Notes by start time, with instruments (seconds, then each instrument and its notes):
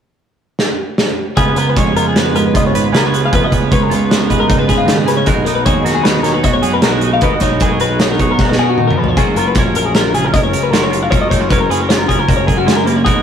0.59 snare
0.98 snare
1.37 picked electric bass C#2, clean electric guitar C#3 B3 F4 G#4 B4, kick, closed hi-hat
1.56 picked electric bass C#2, clean electric guitar B3 A#4, closed hi-hat
1.69 clean electric guitar B4
1.76 picked electric bass F2, clean electric guitar G#3 C#5, kick, snare, closed hi-hat
1.96 clean electric guitar F4 A#4, closed hi-hat
2.08 clean electric guitar G#4
2.16 clean electric guitar B3 B4, snare, closed hi-hat
2.34 clean electric guitar G#2 A#4 B4, closed hi-hat
2.47 clean electric guitar B4
2.55 picked electric bass C#2, clean electric guitar F4 D#5, kick, closed hi-hat
2.67 clean electric guitar C#5
2.73 picked electric bass G#1, clean electric guitar B4, closed hi-hat
2.86 clean electric guitar B4
2.92 picked electric bass C#2, clean electric guitar C#3 B3 F4 B4, snare, closed hi-hat
2.97 clean electric guitar A#4
3.06 clean electric guitar C#5
3.13 clean electric guitar B3, closed hi-hat
3.26 clean electric guitar F5
3.32 picked electric bass F2, clean electric guitar C#3 B3 F4 B4, kick, closed hi-hat
3.44 clean electric guitar D#5
3.52 picked electric bass C#2, clean electric guitar B3 C#5, kick, closed hi-hat
3.71 picked electric bass C#2, clean electric guitar G#3 B4 C#5, kick, closed hi-hat
3.83 clean electric guitar A#4
3.90 picked electric bass C#2, clean electric guitar F4 B4, closed hi-hat
4.11 clean electric guitar B3 C#5, snare, closed hi-hat
4.22 clean electric guitar A#4
4.30 picked electric bass C#2, clean electric guitar G#2 G#4 B4, kick, closed hi-hat
4.40 clean electric guitar A#4
4.48 picked electric bass C#2, clean electric guitar D#4, kick, closed hi-hat
4.59 clean electric guitar F4 B4
4.68 picked electric bass C#3, clean electric guitar G#4 B4, kick, snare, closed hi-hat
4.78 clean electric guitar F4
4.86 clean electric guitar D#3, snare, closed hi-hat
4.97 clean electric guitar G#4
5.06 clean electric guitar C#3 B4, snare, closed hi-hat
5.17 clean electric guitar C#5
5.26 picked electric bass B1, clean electric guitar B2 D#4 F#4 G#4 A#4, kick, closed hi-hat
5.45 picked electric bass B1, clean electric guitar D#4 A#4, closed hi-hat
5.55 clean electric guitar B4
5.66 picked electric bass D#2, clean electric guitar F#3 G#4 C#5, kick, closed hi-hat
5.84 clean electric guitar F#4 A#4, snare, closed hi-hat
5.95 clean electric guitar G#4
6.04 clean electric guitar D#4 B4, snare, closed hi-hat
6.23 clean electric guitar B2 A#4 C#5, snare, closed hi-hat
6.34 clean electric guitar B4
6.43 picked electric bass B1, clean electric guitar F#4 D#5, kick, snare, closed hi-hat
6.53 clean electric guitar C#5
6.62 picked electric bass F#2, clean electric guitar G#4, closed hi-hat
6.73 clean electric guitar A#4 B4
6.82 picked electric bass B1, clean electric guitar B2 D#4 F#4 A#4, snare, closed hi-hat
6.86 clean electric guitar A#4
6.92 clean electric guitar C#5
7.01 clean electric guitar D#4, closed hi-hat
7.13 clean electric guitar F5
7.21 picked electric bass D#2, clean electric guitar B2 D#4 F#4 A#4 B4, kick, closed hi-hat
7.33 clean electric guitar D#5
7.40 picked electric bass B1, clean electric guitar D#4 C#5, kick, snare, closed hi-hat
7.60 picked electric bass B1, clean electric guitar F#3 G#4 B4, kick, closed hi-hat
7.71 clean electric guitar A#4
7.80 picked electric bass B1, clean electric guitar F#4 B4, closed hi-hat
8.00 clean electric guitar D#4 C#5, snare, closed hi-hat
8.11 clean electric guitar A#4
8.19 picked electric bass B1, clean electric guitar B2 G#4 C#5, kick, closed hi-hat
8.31 clean electric guitar A#4
8.39 picked electric bass B1, clean electric guitar F#4, kick, snare
8.49 clean electric guitar B4, snare
8.57 picked electric bass B2, clean electric guitar G#4 A#4
8.69 clean electric guitar F#4
8.78 clean electric guitar D#3, mid tom
8.87 clean electric guitar A#4, mid tom
8.98 clean electric guitar F3 B4
9.04 floor tom
9.08 clean electric guitar C#5
9.17 picked electric bass F#1, clean electric guitar F#3 F4 G#4 A#4, kick, closed hi-hat
9.36 picked electric bass F#1, clean electric guitar F4 A#4, closed hi-hat
9.48 clean electric guitar B4
9.55 picked electric bass A#1, clean electric guitar C#4 C#5, kick, snare, closed hi-hat
9.59 clean electric guitar A#4
9.75 clean electric guitar A#4, closed hi-hat
9.86 clean electric guitar G#4
9.95 clean electric guitar F4 A#4, snare, closed hi-hat
10.14 clean electric guitar C#3 G#4, closed hi-hat
10.25 clean electric guitar A#4
10.34 picked electric bass F#1, clean electric guitar A#4 D#5, kick, closed hi-hat
10.43 clean electric guitar C#5
10.53 picked electric bass C#2, clean electric guitar A#4, closed hi-hat
10.63 clean electric guitar B4
10.71 picked electric bass F#1, clean electric guitar F#3 F4 A#4, snare, closed hi-hat
10.83 clean electric guitar C#5
10.91 clean electric guitar F4, closed hi-hat
11.03 clean electric guitar F5
11.10 picked electric bass A#1, clean electric guitar F#3 F4 A#4 C#5, kick, closed hi-hat
11.21 clean electric guitar D#5
11.30 picked electric bass F#1, clean electric guitar D#4 C#5, kick, snare, closed hi-hat
11.41 clean electric guitar F4
11.50 picked electric bass F#1, clean electric guitar C#4 A#4 B4, kick, closed hi-hat
11.61 clean electric guitar A#4
11.69 picked electric bass F#1, clean electric guitar G#4 B4, closed hi-hat
11.81 clean electric guitar A#4
11.89 clean electric guitar F4 C#5, snare, closed hi-hat
11.99 clean electric guitar A#4
12.08 picked electric bass F#1, clean electric guitar C#3 G#4 A#4, kick, closed hi-hat
12.19 clean electric guitar A#4
12.29 picked electric bass F#1, clean electric guitar A#4, kick, closed hi-hat
12.37 clean electric guitar C#5
12.47 picked electric bass F#2, clean electric guitar G#4 A#4, kick, closed hi-hat
12.57 clean electric guitar F#4 A#4
12.66 clean electric guitar G#3, snare, closed hi-hat
12.76 clean electric guitar A#4
12.86 clean electric guitar A#3 B4, closed hi-hat
12.96 clean electric guitar C#5
13.05 picked electric bass B1, clean electric guitar B2 D#4 F#4 G#4 A#4, kick, closed hi-hat